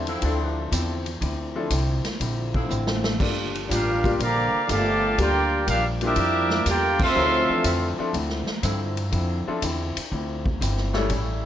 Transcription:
Already playing: E2
0.07 D3 F3 C4 E4, ride
0.21 D2 D3 F3 C4 D4 E4, kick, ride
0.25 A4
0.71 E2 D3 F3 C4 E4, kick, hi-hat pedal, ride
1.06 ride
1.21 D2 D3 F3 C4 E4, kick, ride
1.55 F3 C4 D4 E4 A4
1.70 C2 D3 F3 C4 E4, kick, hi-hat pedal, ride
2.04 muted upright bass stroke, snare, ride
2.19 A#1 D3 F3 C4 E4, kick, ride
2.54 D3 F3 C4 E4, kick
2.68 A1 D3 F3 C4 E4, hi-hat pedal
2.87 snare
3.04 snare
3.19 G1 G2 F3 G3 A#3 D4 F4 A4, kick, crash
3.55 ride
3.68 A1 G2 F3 A#3 D4 F4 G4 A#4 F5, kick, hi-hat pedal, ride
4.04 G3 A#3 D4 F4 G4, kick, ride
4.18 A#1 G2 D3 F3 A#3 D4 A#5, kick, ride
4.22 G4 D5 F5
4.53 muted upright bass stroke
4.67 G1 G2 A#2 D3 F3 G3 A3 A#3 D4 F4 D5, kick, hi-hat pedal, ride
4.72 G4 F5 A5
5.18 D2 G2 F3 G3 A#3 D4 F4 G4 A#4 D5 G5, kick, ride
5.66 A#1 G2 F3 A#3 D4 F4 G4 A#4 F5, kick, hi-hat pedal, ride
6.01 F3 G3 A#3 D4 E4 F4 G4, ride
6.06 D4 G4 A#4 E5
6.16 F2 G2 F3 A#3 D4, kick, ride
6.50 snare
6.65 E2 G2 D3 F3 G3 A#3 D4 F4 G4, kick, hi-hat pedal, ride
6.69 F4 A#4 D5 G5
6.99 F3 A3 C4 A4 E5 F5 C6, kick, crash
7.14 D2 D3 F3 F#3 C4 C#4 D#4 E4 F4 A#4
7.49 E3 F3 C4 D4 A4, muted upright bass stroke
7.64 F2 D3 F3 C4 E4, kick, hi-hat pedal, ride
7.99 F3 C4 D4 E4 A4, muted upright bass stroke
8.13 D2 D3 F3 C4 E4, kick, ride
8.29 snare
8.47 muted upright bass stroke, snare
8.62 G2 D3 F3 C4 E4, kick, hi-hat pedal, ride
8.97 ride
9.11 F2 D3 F3 C4 E4, kick, ride
9.47 F3 C4 D4 E4 A4, muted upright bass stroke
9.62 E2 D3 F3 C4 E4, kick, hi-hat pedal, ride
9.97 muted upright bass stroke, ride
10.12 D2 D3 F3 C4 E4, kick
10.46 kick
10.60 G1 D3 F3 C4 E4, kick, hi-hat pedal, ride
10.77 snare
10.93 C#3 G3 A3 C#4 E4 A4, snare
11.10 A1 A2 G3 C#4 E4, kick, ride

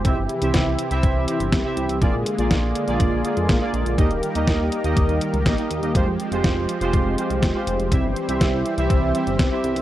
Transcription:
Already playing: G4
0.05 C2 C3 E3 C4 E4 G4 E5, kick, closed hi-hat
0.17 G1
0.29 closed hi-hat
0.42 C2 C4 E4 G4 E5, closed hi-hat
0.54 C2, kick, snare, closed hi-hat
0.66 C2
0.79 closed hi-hat
0.91 C2 C4 E4 G4 E5, closed hi-hat
1.03 C2, kick, closed hi-hat
1.15 C2
1.28 C4 E4 G4 E5, closed hi-hat
1.40 G1, closed hi-hat
1.52 C2, kick, snare, closed hi-hat
1.65 C4 E4 G4 E5
1.77 C2, closed hi-hat
1.89 C2, closed hi-hat
2.01 A#1 D3 G#3 A#3 F4 G#4 D5, kick, closed hi-hat
2.14 A#2
2.26 closed hi-hat
2.38 A#1 A#3 F4 G#4 D5, closed hi-hat
2.51 A#1, kick, snare, closed hi-hat
2.63 A#1
2.75 closed hi-hat
2.88 A#1 A#3 F4 G#4 D5, closed hi-hat
3.00 A#1, kick, closed hi-hat
3.12 A#1
3.25 A#3 F4 G#4 D5, closed hi-hat
3.37 F2, closed hi-hat
3.49 A#1, kick, snare, closed hi-hat
3.61 A#3 F4 G#4 D5
3.74 A#1, closed hi-hat
3.86 A#1, closed hi-hat
3.98 D#2 D#3 G3 A#3 D#4 G4 A#4 D#5, kick, closed hi-hat
4.11 D#1, closed hi-hat
4.23 closed hi-hat
4.35 D#2 A#3 D#4 G4 D#5, closed hi-hat
4.47 D#2, kick, snare, closed hi-hat
4.60 D#2
4.72 closed hi-hat
4.84 D#2 A#3 D#4 G4 D#5, closed hi-hat
4.97 D#2, kick, closed hi-hat
5.09 D#2, closed hi-hat
5.21 closed hi-hat
5.34 C#2, closed hi-hat
5.46 A#1 A#3 D#4 G4 D#5, kick, snare, closed hi-hat
5.58 A#3 D#4 G4 D#5, closed hi-hat
5.70 D#2, closed hi-hat
5.83 D#2 A#3 D#4 G4 D#5, closed hi-hat
5.95 F1 F3 G#3 C4 F4 G4 C5, kick, closed hi-hat
6.07 F2
6.20 closed hi-hat
6.32 F1 G#3 F4 G4 C5, closed hi-hat
6.44 F1, kick, snare, closed hi-hat
6.56 F1
6.69 closed hi-hat
6.81 F1 G#3 F4 G4 C5, closed hi-hat
6.93 F1, kick, closed hi-hat
7.06 F1
7.18 G#3 F4 G4 C5, closed hi-hat
7.30 C2, closed hi-hat
7.43 F1, kick, snare, closed hi-hat
7.55 G#3 F4 G4 C5
7.67 F1, closed hi-hat
7.79 F1, closed hi-hat
7.91 C2 E3 G3 C4 E4 G4 C5 E5, kick, closed hi-hat
8.04 G1
8.16 closed hi-hat
8.28 C2 C4 E4 G4 E5, closed hi-hat
8.41 C2, kick, snare, closed hi-hat
8.53 C2
8.66 closed hi-hat
8.78 C2 C4 E4 G4 E5, closed hi-hat
8.90 C2, kick, closed hi-hat
9.02 C2
9.15 C4 E4 G4 E5, closed hi-hat
9.27 G1, closed hi-hat
9.39 C2, kick, snare, closed hi-hat
9.52 C4 E4 G4 E5
9.64 C2, closed hi-hat
9.76 C2, closed hi-hat

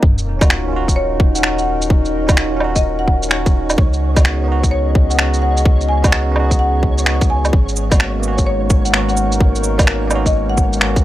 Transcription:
0.02 D#1 D#4 C#5, kick, sub drop
0.08 A#4
0.18 shaker
0.39 C#4 F4 F#4, kick, low woodblock, shaker
0.47 D#5, finger snap
0.68 C#4
0.72 F4 F#4
0.88 kick, shaker
0.96 C#5
1.20 kick
1.35 C#4 F#5, shaker
1.43 D#4, finger snap
1.47 F#4
1.58 F#5, shaker
1.82 shaker
1.90 kick
2.05 shaker
2.27 C#4 F4, kick, low woodblock, shaker
2.31 F#4
2.37 finger snap
2.56 C#4 D#4
2.60 low woodblock
2.64 F#4
2.76 D#5, kick, shaker
2.99 F#5
3.08 kick
3.23 shaker
3.29 C#4 D#4, finger snap
3.33 F#4
3.46 kick, shaker
3.70 low woodblock, shaker
3.78 C#2 C#4, kick
3.83 G#4
3.93 shaker
4.15 B3 D#4 F#4, kick, low woodblock, shaker
4.25 finger snap
4.36 D#5
4.44 B3 D#4
4.52 F#4
4.63 kick, shaker
4.71 C#5
4.95 kick
5.10 F#5, shaker
5.15 B3 D#4, finger snap
5.23 F#4
5.34 shaker
5.42 F#5
5.57 F#5, shaker
5.65 kick
5.81 shaker
5.89 G#5
6.02 B3 D#4 F#4, kick, low woodblock, shaker
6.12 finger snap
6.32 B3 D#4
6.36 F#4, low woodblock
6.51 kick, shaker
6.59 F#5
6.83 kick
6.98 shaker
7.04 B3 D#4 F#4, finger snap
7.21 kick, shaker
7.30 G#5
7.45 low woodblock, shaker
7.53 G#1 G#3, kick
7.69 shaker
7.76 cabasa
7.84 D#4
7.90 A#3 B3 C#4 F#4, kick, low woodblock, shaker
8.00 finger snap
8.20 A#3 B3 A#4, cabasa
8.25 C#4 F#4
8.38 kick, shaker
8.47 C#5
8.70 kick, cabasa
8.85 F#5, shaker
8.90 A#3 B3, finger snap
8.95 C#4 F#4
9.09 F#5, shaker
9.17 cabasa
9.32 shaker
9.40 kick
9.56 cabasa, shaker
9.64 cabasa
9.78 A#3 B3 C#4 F#4, kick, low woodblock, shaker
9.87 finger snap
10.07 A#3 B3, cabasa, low woodblock
10.13 C#4 F#4
10.26 D#5, kick, shaker
10.49 F#5
10.58 kick, cabasa
10.73 shaker
10.79 A#3 B3 C#4 F#4, finger snap
10.96 kick, shaker

